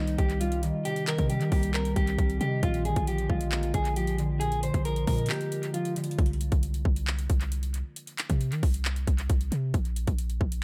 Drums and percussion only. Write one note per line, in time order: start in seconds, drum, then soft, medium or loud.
0.07 closed hi-hat medium
0.18 kick medium
0.18 closed hi-hat medium
0.30 closed hi-hat medium
0.41 closed hi-hat medium
0.52 closed hi-hat medium
0.63 closed hi-hat medium
0.85 closed hi-hat medium
0.96 closed hi-hat medium
1.07 clap medium
1.07 closed hi-hat medium
1.18 kick medium
1.18 closed hi-hat medium
1.30 closed hi-hat medium
1.41 closed hi-hat medium
1.52 kick medium
1.52 open hi-hat medium
1.63 closed hi-hat medium
1.74 clap loud
1.74 closed hi-hat soft
1.85 closed hi-hat medium
1.96 kick medium
1.96 closed hi-hat medium
2.07 closed hi-hat medium
2.19 kick medium
2.19 closed hi-hat medium
2.30 closed hi-hat medium
2.41 closed hi-hat medium
2.63 kick loud
2.63 closed hi-hat medium
2.74 closed hi-hat medium
2.85 closed hi-hat medium
2.96 kick medium
2.96 closed hi-hat medium
3.07 closed hi-hat medium
3.18 closed hi-hat medium
3.30 kick medium
3.41 closed hi-hat medium
3.52 clap loud
3.52 closed hi-hat soft
3.63 closed hi-hat medium
3.74 kick medium
3.74 closed hi-hat medium
3.85 closed hi-hat medium
3.96 closed hi-hat medium
4.07 closed hi-hat medium
4.19 closed hi-hat medium
4.41 closed hi-hat medium
4.52 closed hi-hat medium
4.63 closed hi-hat medium
4.74 kick medium
4.74 closed hi-hat medium
4.85 closed hi-hat medium
4.96 closed hi-hat medium
5.07 kick medium
5.07 open hi-hat medium
5.18 closed hi-hat medium
5.26 clap loud
5.26 closed hi-hat medium
5.33 closed hi-hat medium
5.41 closed hi-hat medium
5.52 closed hi-hat medium
5.63 closed hi-hat medium
5.74 closed hi-hat medium
5.85 closed hi-hat medium
5.96 closed hi-hat medium
6.04 closed hi-hat medium
6.11 closed hi-hat medium
6.19 kick loud
6.19 closed hi-hat medium
6.26 closed hi-hat medium
6.33 closed hi-hat soft
6.41 closed hi-hat medium
6.52 kick medium
6.52 closed hi-hat medium
6.63 closed hi-hat medium
6.74 closed hi-hat medium
6.85 kick medium
6.96 closed hi-hat medium
7.07 clap loud
7.07 closed hi-hat soft
7.19 closed hi-hat medium
7.30 kick medium
7.30 closed hi-hat medium
7.41 closed hi-hat medium
7.52 closed hi-hat medium
7.63 closed hi-hat medium
7.74 closed hi-hat medium
7.96 closed hi-hat medium
8.07 closed hi-hat medium
8.18 clap medium
8.18 closed hi-hat medium
8.30 kick medium
8.30 closed hi-hat medium
8.41 closed hi-hat medium
8.52 closed hi-hat medium
8.63 kick medium
8.63 open hi-hat medium
8.74 closed hi-hat medium
8.85 clap loud
8.85 closed hi-hat soft
8.96 closed hi-hat medium
9.07 kick medium
9.07 closed hi-hat medium
9.18 closed hi-hat medium
9.30 kick medium
9.30 closed hi-hat medium
9.41 closed hi-hat medium
9.52 closed hi-hat medium
9.74 kick loud
9.74 closed hi-hat medium
9.85 closed hi-hat medium
9.96 closed hi-hat medium
10.07 kick medium
10.07 closed hi-hat medium
10.18 closed hi-hat medium
10.30 closed hi-hat medium
10.41 kick medium
10.52 closed hi-hat medium